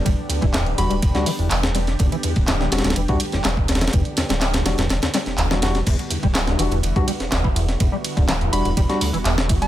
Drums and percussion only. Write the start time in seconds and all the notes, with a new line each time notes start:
0.06 kick, closed hi-hat, ride
0.30 closed hi-hat, ride
0.42 kick, closed hi-hat
0.54 snare, clap, closed hi-hat, ride
0.66 ride
0.78 closed hi-hat, ride
0.90 closed hi-hat, ride
1.02 kick, closed hi-hat, ride
1.15 snare, closed hi-hat
1.26 closed hi-hat, open hi-hat, ride
1.39 closed hi-hat
1.51 clap, closed hi-hat, ride
1.63 snare
1.75 snare, closed hi-hat, ride
1.87 snare, closed hi-hat
1.99 kick, closed hi-hat, ride
2.12 ride
2.23 closed hi-hat, ride
2.36 kick, closed hi-hat
2.48 snare, clap, closed hi-hat, ride
2.61 snare
2.72 snare, closed hi-hat, ride
2.78 snare, ride
2.84 snare, closed hi-hat, ride
2.90 snare, ride
2.96 closed hi-hat, ride
3.08 kick, closed hi-hat, ride
3.20 closed hi-hat, ride
3.32 snare, closed hi-hat
3.44 snare, clap, closed hi-hat, ride
3.57 kick
3.68 snare, closed hi-hat, ride
3.75 snare, ride
3.81 snare, closed hi-hat, ride
3.88 snare, ride
3.93 kick, closed hi-hat, ride
4.05 closed hi-hat
4.17 snare, closed hi-hat, ride
4.29 snare, closed hi-hat, ride
4.41 snare, clap, closed hi-hat, ride
4.54 snare, closed hi-hat, ride
4.66 snare, closed hi-hat, ride
4.78 snare, closed hi-hat, ride
4.89 snare, closed hi-hat, ride
5.02 snare, closed hi-hat, ride
5.14 snare, closed hi-hat, ride
5.26 snare, closed hi-hat
5.38 clap, closed hi-hat, ride
5.51 snare
5.62 snare, closed hi-hat, ride
5.75 snare, closed hi-hat
5.87 kick, closed hi-hat, crash, ride
5.99 ride
6.11 closed hi-hat, ride
6.23 kick, closed hi-hat
6.35 snare, clap, closed hi-hat, ride
6.47 snare, closed hi-hat
6.59 closed hi-hat, ride
6.72 closed hi-hat, ride
6.83 closed hi-hat, ride
6.96 kick, closed hi-hat
7.08 closed hi-hat, ride
7.20 snare, closed hi-hat
7.32 snare, clap, closed hi-hat, ride
7.44 kick
7.56 closed hi-hat, ride
7.69 snare, closed hi-hat
7.80 kick, closed hi-hat, ride
8.04 closed hi-hat, ride
8.17 kick, closed hi-hat
8.29 snare, clap, closed hi-hat, ride
8.41 closed hi-hat
8.53 closed hi-hat, ride
8.65 closed hi-hat, ride
8.77 kick, closed hi-hat, ride
8.89 snare, closed hi-hat
9.01 closed hi-hat, open hi-hat, ride
9.14 closed hi-hat
9.25 clap, closed hi-hat, ride
9.38 snare
9.49 kick, closed hi-hat, ride
9.62 closed hi-hat, ride